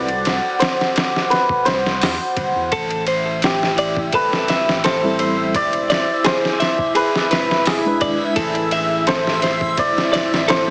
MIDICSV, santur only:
0, 0, Header, 1, 2, 480
1, 0, Start_track
1, 0, Tempo, 705882
1, 1852, Time_signature, 4, 2, 24, 8
1, 7278, End_track
2, 0, Start_track
2, 0, Title_t, "Santur"
2, 0, Program_c, 0, 15
2, 0, Note_on_c, 0, 67, 79
2, 0, Note_on_c, 0, 69, 88
2, 0, Note_on_c, 0, 72, 100
2, 0, Note_on_c, 0, 74, 117
2, 400, Note_off_c, 0, 72, 0
2, 403, Note_on_c, 0, 72, 92
2, 633, Note_off_c, 0, 67, 0
2, 724, Note_off_c, 0, 69, 0
2, 884, Note_on_c, 0, 71, 90
2, 925, Note_off_c, 0, 72, 0
2, 1123, Note_on_c, 0, 72, 93
2, 1164, Note_off_c, 0, 71, 0
2, 1600, Note_off_c, 0, 74, 0
2, 2345, Note_on_c, 0, 67, 77
2, 2820, Note_on_c, 0, 71, 92
2, 2860, Note_off_c, 0, 72, 0
2, 3292, Note_on_c, 0, 72, 99
2, 3333, Note_off_c, 0, 71, 0
2, 3777, Note_on_c, 0, 74, 111
2, 4251, Note_off_c, 0, 72, 0
2, 4254, Note_on_c, 0, 72, 104
2, 4479, Note_off_c, 0, 67, 0
2, 4733, Note_on_c, 0, 71, 93
2, 4773, Note_off_c, 0, 72, 0
2, 5217, Note_on_c, 0, 68, 78
2, 5451, Note_off_c, 0, 74, 0
2, 6168, Note_on_c, 0, 72, 104
2, 6209, Note_off_c, 0, 71, 0
2, 6656, Note_on_c, 0, 74, 107
2, 7133, Note_off_c, 0, 72, 0
2, 7136, Note_on_c, 0, 72, 107
2, 7278, Note_off_c, 0, 68, 0
2, 7278, Note_off_c, 0, 72, 0
2, 7278, Note_off_c, 0, 74, 0
2, 7278, End_track
0, 0, End_of_file